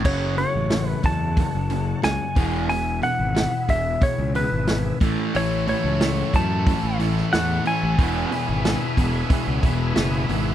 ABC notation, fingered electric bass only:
X:1
M:4/4
L:1/16
Q:1/4=91
K:Emix
V:1 name="Fingered electric bass" clef=bass
F,,,3 A,,,3 E,,3 F,,,3 C,, z E,,,2- | E,,,3 G,,,2 z E,,,2 z C,,2 G,,,3 A,,, z | A,,,3 C,,3 F,,3 A,,,3 E,,2 z A,,, | E,,,2 z G,,,2 z E,,,2 z C,, E,,,2 F,,,2 G,,,2 |]